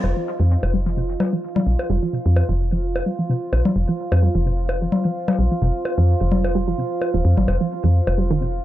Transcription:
Already playing: ambient pad D#5
0.04 fm bass F1, ambient pad F4, low bongo
0.17 synth pluck F3
0.25 ambient pad C5
0.38 fm bass F2, synth pluck F3, ambient pad F5
0.63 fm bass F1, low bongo
0.74 synth pluck G3
0.86 synth pluck F3
0.97 synth pluck C3
1.20 low bongo, low conga
1.33 synth pluck F3
1.56 synth pluck F3, low conga
1.67 fm bass A#1
1.79 low bongo
1.90 fm bass F1, synth pluck G3
2.03 synth pluck F3
2.13 synth pluck C3
2.26 fm bass F2
2.36 low bongo
2.49 fm bass F1, synth pluck F3
2.72 synth pluck F3
2.96 low bongo
3.06 synth pluck G3
3.19 synth pluck F3
3.29 synth pluck C3
3.53 fm bass A#1, low bongo
3.65 synth pluck F3, low conga
3.76 fm bass F1
3.89 synth pluck F3
4.12 fm bass F2, low bongo
4.22 synth pluck G3
4.35 fm bass F1, synth pluck F3
4.46 synth pluck C3
4.69 low bongo
4.82 synth pluck F3
4.92 low conga
5.05 synth pluck F3
5.28 low bongo, low conga
5.39 fm bass A#1, synth pluck G3
5.51 synth pluck F3
5.62 fm bass F1, synth pluck C3
5.85 low bongo
5.98 fm bass F2, synth pluck F3
6.21 fm bass F1, synth pluck F3
6.32 low conga
6.44 low bongo
6.55 synth pluck G3
6.68 synth pluck F3
6.78 synth pluck C3
7.01 low bongo
7.14 fm bass D#1, synth pluck F3
7.25 fm bass F2
7.37 fm bass G#1, synth pluck F3, low conga
7.48 fm bass F1, low bongo
7.61 synth pluck F3
7.84 fm bass F2, synth pluck F3
8.07 fm bass F1, low bongo
8.18 synth pluck G3
8.31 synth pluck D#3
8.41 synth pluck C3

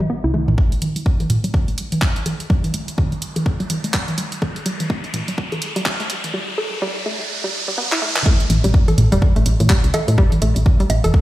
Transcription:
0.00 synth arpeggio sound G3, high tom
0.10 synth arpeggio sound B3
0.24 fm bass C2, synth arpeggio sound E4
0.34 synth arpeggio sound A3, high tom
0.48 fm bass A1, synth arpeggio sound E3, mid tom
0.58 synth arpeggio sound A3, kick, riser
0.72 closed hi-hat
0.82 closed hi-hat, high tom
0.96 synth arpeggio sound G3, closed hi-hat
1.06 kick
1.20 synth arpeggio sound A4, closed hi-hat, high tom
1.30 closed hi-hat, mid tom
1.44 synth arpeggio sound G3, closed hi-hat
1.54 kick, high tom
1.68 synth arpeggio sound A3, closed hi-hat
1.78 closed hi-hat
1.92 closed hi-hat, high tom
2.02 synth arpeggio sound G3, kick, clap
2.16 closed hi-hat
2.26 synth arpeggio sound A4, closed hi-hat, high tom
2.40 closed hi-hat
2.50 synth arpeggio sound G3, kick
2.64 closed hi-hat, high tom
2.74 synth arpeggio sound A3, closed hi-hat
2.88 closed hi-hat
2.98 kick, high tom
3.12 synth arpeggio sound G3, closed hi-hat
3.22 closed hi-hat
3.36 synth arpeggio sound A4, closed hi-hat, high tom
3.46 kick
3.60 synth arpeggio sound G3, closed hi-hat
3.70 closed hi-hat, high tom
3.84 synth arpeggio sound A3, closed hi-hat
3.94 kick, clap
4.08 closed hi-hat, high tom
4.18 synth arpeggio sound G3, closed hi-hat
4.32 closed hi-hat
4.42 synth arpeggio sound A4, kick, high tom
4.56 closed hi-hat
4.66 synth arpeggio sound G3, closed hi-hat
4.80 closed hi-hat, high tom
4.90 synth arpeggio sound A3, kick
5.04 closed hi-hat
5.14 closed hi-hat, mid tom, high tom
5.28 synth arpeggio sound G3, closed hi-hat
5.38 kick
5.52 synth arpeggio sound A4, closed hi-hat, high tom
5.62 closed hi-hat
5.76 synth arpeggio sound G3, closed hi-hat
5.86 kick, clap, high tom
6.00 synth arpeggio sound A3, closed hi-hat
6.10 closed hi-hat
6.24 closed hi-hat, high tom
6.34 synth arpeggio sound G3
6.58 synth arpeggio sound A4
6.82 synth arpeggio sound G3
7.06 synth arpeggio sound A3
7.44 synth arpeggio sound G3
7.68 synth arpeggio sound G3
7.78 synth arpeggio sound B3
7.92 synth arpeggio sound E4, clap
8.02 synth arpeggio sound A3
8.16 synth arpeggio sound E3, clap
8.26 synth arpeggio sound A3, kick
8.40 closed hi-hat
8.50 fm bass A1, closed hi-hat, high tom
8.64 fm bass A1, synth arpeggio sound G3, closed hi-hat
8.74 kick
8.88 synth arpeggio sound A4, closed hi-hat, high tom
8.98 fm bass A1, closed hi-hat, mid tom
9.12 fm bass E1, synth arpeggio sound G3, closed hi-hat
9.22 kick, high tom
9.36 fm bass A1, synth arpeggio sound A3, closed hi-hat
9.46 fm bass A1, closed hi-hat
9.60 fm bass A2, closed hi-hat, high tom
9.70 synth arpeggio sound G3, kick, clap
9.84 fm bass C2, closed hi-hat
9.94 synth arpeggio sound A4, closed hi-hat, high tom, high bongo
10.08 fm bass A2, closed hi-hat
10.18 synth arpeggio sound G3, kick
10.32 closed hi-hat, high tom
10.42 fm bass A1, synth arpeggio sound A3, closed hi-hat
10.56 fm bass A1, closed hi-hat
10.66 kick, high tom
10.80 synth arpeggio sound G3, closed hi-hat
10.90 fm bass A1, closed hi-hat, high bongo
11.04 fm bass E1, synth arpeggio sound A4, closed hi-hat, high tom
11.14 kick

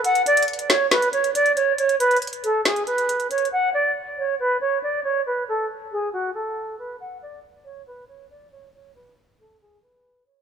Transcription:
0.04 flute F#5, closed hi-hat
0.15 closed hi-hat
0.26 flute D5, closed hi-hat
0.37 closed hi-hat
0.43 closed hi-hat
0.48 closed hi-hat
0.53 closed hi-hat
0.59 closed hi-hat
0.69 flute C#5, snare, closed hi-hat
0.91 flute B4, snare, closed hi-hat
1.02 closed hi-hat
1.13 flute C#5, closed hi-hat
1.24 closed hi-hat
1.35 flute D5, closed hi-hat
1.46 closed hi-hat
1.56 flute C#5, closed hi-hat
1.78 flute C#5, closed hi-hat
1.89 closed hi-hat
2.00 flute B4, closed hi-hat
2.11 closed hi-hat
2.16 closed hi-hat
2.22 closed hi-hat
2.27 closed hi-hat
2.33 closed hi-hat
2.44 flute A4, closed hi-hat
2.65 flute G#4, snare, closed hi-hat
2.76 closed hi-hat
2.87 flute B4, closed hi-hat
2.98 closed hi-hat
3.09 closed hi-hat
3.20 closed hi-hat
3.31 flute C#5, closed hi-hat
3.38 closed hi-hat
3.45 closed hi-hat
3.52 flute F#5
3.74 flute D5
4.18 flute C#5
4.40 flute B4
4.61 flute C#5
4.83 flute D5
5.04 flute C#5
5.27 flute B4
5.49 flute A4
5.92 flute G#4
6.13 flute F#4
6.35 flute A4
6.79 flute B4
7.00 flute F#5
7.22 flute D5
7.65 flute C#5
7.87 flute B4
8.08 flute C#5
8.30 flute D5
8.52 flute C#5
8.74 flute C#5
8.95 flute B4
9.40 flute A4
9.61 flute G#4
9.82 flute B4
10.26 flute C#5

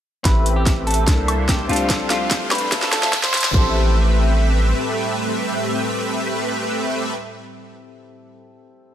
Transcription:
0.23 808-style bass A1, supersaw synth A3 C4 G4 B4 E5, grand piano C4 E4 G4, clean electric guitar B4, kick, snare, closed hi-hat, riser
0.27 grand piano B4
0.46 closed hi-hat
0.56 clean electric guitar G4
0.66 kick, snare, closed hi-hat
0.87 clean electric guitar A4, closed hi-hat
0.91 closed hi-hat
0.94 closed hi-hat
1.05 808-style bass C2, grand piano A#3 D4 E4, supersaw synth A#3 D4 A4 C5 E5, ambient pad D4, kick, snare, closed hi-hat
1.09 grand piano A4
1.28 closed hi-hat, high woodblock
1.49 clean electric guitar G4, kick, snare, closed hi-hat
1.67 808-style bass C2, ambient pad F3, supersaw synth A3 D4 G4 C5 F5, grand piano C4 D4 G4 A4, clean electric guitar F4, closed hi-hat
1.73 closed hi-hat
1.76 closed hi-hat
1.90 kick, snare, closed hi-hat
2.10 clean electric guitar F4, snare, closed hi-hat
2.31 kick, snare, closed hi-hat
2.51 clean electric guitar B4, snare, closed hi-hat, high woodblock
2.55 closed hi-hat
2.58 closed hi-hat
2.70 808-style bass D2, supersaw synth A3 D4 F4 C5 E5, grand piano C4 F4 A4 E5, kick, snare, closed hi-hat
2.82 snare
2.93 clean electric guitar A4, snare, closed hi-hat
3.03 snare
3.13 kick, snare, closed hi-hat
3.24 clean electric guitar C5, snare
3.34 snare, closed hi-hat
3.37 closed hi-hat
3.41 snare, closed hi-hat
3.51 808-style bass A1, ambient pad A2 G3 C4 A4, supersaw synth A3 C4 G4 B4 E5, grand piano C4 E4 G4, clean electric guitar C5, kick
3.57 grand piano A4

